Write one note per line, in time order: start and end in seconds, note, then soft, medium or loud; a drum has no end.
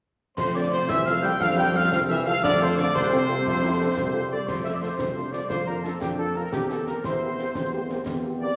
0.37 0.80 F2 medium
0.37 0.57 C3 medium
0.37 1.36 A3 medium
0.37 0.54 C5 loud
0.37 0.46 C5 loud
0.37 0.53 C6 medium
0.37 0.45 C6 medium
0.37 concert bass drum medium
0.37 snare medium
0.37 crash medium
0.55 0.72 D3 medium
0.55 0.61 C4 medium
0.55 0.61 F4 medium
0.55 0.61 A4 medium
0.55 0.71 D5 medium
0.55 0.72 D5 loud
0.55 0.71 D6 medium
0.72 0.91 C3 medium
0.72 0.79 C4 medium
0.72 0.79 F4 medium
0.72 0.79 A4 medium
0.72 0.88 C5 loud
0.72 0.89 C5 medium
0.72 0.88 C6 medium
0.72 0.79 C6 medium
0.72 snare medium
0.89 1.32 C2 medium
0.89 1.06 E3 loud
0.89 1.06 E5 loud
0.89 1.05 E5 loud
0.89 1.05 E6 loud
0.89 1.07 E6 loud
0.89 concert bass drum medium
0.89 snare medium
1.06 1.22 F3 medium
1.06 1.13 C4 medium
1.06 1.13 F4 medium
1.06 1.13 A4 medium
1.06 1.22 F5 medium
1.06 1.24 F5 loud
1.06 1.22 F6 medium
1.06 snare medium
1.22 1.39 G3 loud
1.22 1.30 C4 medium
1.22 1.30 F4 medium
1.22 1.30 A4 medium
1.22 1.39 G5 loud
1.22 1.41 G5 loud
1.22 1.39 G6 loud
1.22 1.29 G6 medium
1.22 snare medium
1.39 1.84 F2 medium
1.39 1.48 F3 loud
1.39 1.91 D4 loud
1.39 1.58 F5 loud
1.39 1.56 F6 loud
1.39 1.47 F6 loud
1.39 concert bass drum medium
1.39 snare medium
1.56 1.76 G3 loud
1.56 1.64 C4 medium
1.56 1.64 F4 medium
1.56 1.64 A4 medium
1.56 1.74 G5 loud
1.56 1.73 G5 loud
1.56 1.74 G6 medium
1.56 1.74 G6 loud
1.74 1.91 F3 loud
1.74 1.81 C4 medium
1.74 1.81 F4 medium
1.74 1.81 A4 medium
1.74 1.83 F5 loud
1.74 1.91 F5 loud
1.74 1.91 F6 loud
1.74 1.91 F6 medium
1.92 2.35 C2 loud
1.92 2.00 F3 loud
1.92 2.43 C4 medium
1.92 2.00 F5 loud
1.92 2.11 F6 loud
1.92 2.08 F6 loud
1.92 concert bass drum medium
1.92 snare medium
2.09 2.25 E3 loud
2.09 2.15 C4 medium
2.09 2.15 F4 medium
2.09 2.15 A4 medium
2.09 2.17 E5 loud
2.09 2.25 E5 loud
2.09 2.25 E6 loud
2.09 2.29 E6 loud
2.26 2.35 F3 loud
2.26 2.32 C4 medium
2.26 2.32 F4 medium
2.26 2.32 A4 medium
2.26 2.42 F5 loud
2.26 2.43 F5 loud
2.26 2.42 F6 loud
2.26 2.44 F6 loud
2.42 2.86 F2 loud
2.42 2.51 D3 loud
2.42 2.90 A3 loud
2.42 2.59 D5 loud
2.42 2.52 D5 loud
2.42 2.60 D6 loud
2.42 concert bass drum medium
2.42 snare medium
2.42 crash soft
2.60 2.68 C3 medium
2.60 2.67 C4 medium
2.60 2.67 F4 medium
2.60 2.67 A4 loud
2.60 2.78 C5 loud
2.60 2.69 C5 medium
2.60 2.77 C6 medium
2.77 2.93 D3 loud
2.77 2.84 C4 medium
2.77 2.84 F4 medium
2.77 2.84 A4 medium
2.77 2.94 D5 loud
2.77 2.94 D6 loud
2.77 snare medium
2.94 3.37 C2 loud
2.94 4.27 C3 loud
2.94 3.11 D4 loud
2.94 4.27 C5 loud
2.94 4.28 C5 loud
2.94 4.27 C6 loud
2.94 concert bass drum medium
2.94 snare medium
3.11 3.28 C4 loud
3.11 3.18 C4 medium
3.11 3.18 F4 medium
3.11 3.18 A4 medium
3.11 snare medium
3.28 3.36 A#3 medium
3.28 3.34 C4 medium
3.28 3.34 F4 medium
3.28 3.34 A4 medium
3.28 snare medium
3.46 3.88 F2 loud
3.46 3.61 A3 loud
3.46 concert bass drum medium
3.46 snare medium
3.61 3.69 C4 medium
3.61 3.69 E4 loud
3.61 3.69 F4 medium
3.61 3.70 A4 medium
3.80 3.86 C4 medium
3.80 3.88 D4 medium
3.80 3.86 F4 medium
3.80 3.86 A4 medium
3.97 4.39 C2 medium
3.97 4.08 C4 medium
3.97 concert bass drum medium
3.97 snare medium
4.13 4.20 C4 medium
4.13 4.20 F4 medium
4.13 4.20 A4 medium
4.30 4.37 C4 medium
4.30 4.37 F4 medium
4.30 4.37 A4 medium
4.30 4.46 D5 loud
4.30 4.47 D5 medium
4.30 4.38 D6 medium
4.47 4.91 F2 medium
4.47 4.65 C5 medium
4.47 4.55 C6 medium
4.47 concert bass drum medium
4.47 snare medium
4.47 crash soft
4.64 4.70 A3 medium
4.64 4.70 F4 medium
4.64 4.71 A4 medium
4.64 4.72 E5 medium
4.64 4.69 E5 medium
4.64 4.73 E6 medium
4.64 snare medium
4.73 4.77 D5 medium
4.73 4.82 D5 medium
4.73 4.82 D6 medium
4.81 4.88 A3 medium
4.81 4.88 F4 medium
4.81 4.88 A4 medium
4.81 5.29 C5 medium
4.81 5.36 C6 medium
4.81 snare soft
4.99 5.42 C2 medium
4.99 5.15 C4 medium
4.99 concert bass drum medium
4.99 snare medium
5.16 5.22 A3 medium
5.16 5.34 D4 medium
5.16 5.22 F4 medium
5.16 5.22 A4 medium
5.32 5.39 A3 medium
5.32 5.41 C4 medium
5.32 5.39 F4 medium
5.32 5.39 A4 medium
5.32 5.50 D5 medium
5.32 5.41 D5 medium
5.32 5.51 D6 medium
5.32 snare soft
5.49 5.93 F2 medium
5.49 5.98 F4 medium
5.49 5.65 C5 medium
5.49 5.57 C5 medium
5.49 5.66 C6 medium
5.49 concert bass drum medium
5.49 snare medium
5.66 5.74 A#3 medium
5.66 5.74 D4 soft
5.66 5.73 F4 medium
5.66 5.74 A#4 medium
5.66 5.76 A#4 medium
5.66 5.82 A#5 medium
5.83 5.91 A#3 medium
5.83 5.91 D4 soft
5.83 5.91 F4 soft
5.83 5.92 A4 medium
5.83 5.93 A4 medium
5.83 5.89 A5 medium
5.83 snare medium
6.00 6.44 F2 medium
6.00 6.49 D4 medium
6.00 6.09 G4 medium
6.00 6.17 G5 medium
6.00 concert bass drum medium
6.00 snare medium
6.18 6.25 A#3 medium
6.18 6.25 D4 medium
6.18 6.25 F4 medium
6.18 6.34 A4 medium
6.18 6.35 A4 medium
6.18 6.36 A5 medium
6.34 6.43 A#3 medium
6.34 6.42 D4 medium
6.34 6.43 F4 medium
6.34 6.52 A#4 medium
6.34 6.53 A#4 medium
6.34 6.51 A#5 medium
6.52 6.95 E2 medium
6.52 7.00 C4 medium
6.52 6.68 G4 medium
6.52 6.70 G4 medium
6.52 6.58 G5 medium
6.52 concert bass drum medium
6.52 snare medium
6.69 6.76 A#3 medium
6.69 6.76 C4 medium
6.69 6.76 G4 medium
6.69 6.87 A4 medium
6.69 6.79 A4 medium
6.69 6.75 A5 medium
6.69 snare medium
6.87 6.94 A#3 medium
6.87 6.94 C4 medium
6.87 6.93 G4 medium
6.87 7.03 A#4 medium
6.87 6.95 A#4 medium
6.87 6.94 A#5 medium
6.87 snare medium
7.04 7.47 E2 medium
7.04 7.52 E4 medium
7.04 8.20 C5 medium
7.04 8.21 C5 medium
7.04 8.20 C6 medium
7.04 concert bass drum medium
7.04 snare medium
7.22 7.28 A#3 medium
7.22 7.28 C4 medium
7.22 7.28 G4 medium
7.38 7.45 A#3 medium
7.38 7.45 C4 medium
7.38 7.45 G4 soft
7.38 snare soft
7.55 7.99 E2 medium
7.55 7.71 C4 medium
7.55 concert bass drum medium
7.55 snare medium
7.73 7.81 A3 medium
7.73 7.79 A#3 medium
7.73 7.79 C4 medium
7.73 7.79 G4 medium
7.89 7.97 A#3 medium
7.89 7.96 A#3 medium
7.89 7.96 C4 medium
7.89 7.96 G4 medium
7.89 snare soft
8.06 8.50 E2 medium
8.06 8.55 C4 medium
8.06 concert bass drum medium
8.06 snare medium
8.24 8.30 A#3 medium
8.24 8.30 C4 medium
8.24 8.30 G4 medium
8.40 8.47 A#3 medium
8.40 8.47 C4 medium
8.40 8.47 G4 medium
8.40 8.56 D5 loud
8.40 8.49 D5 medium
8.40 8.56 D6 medium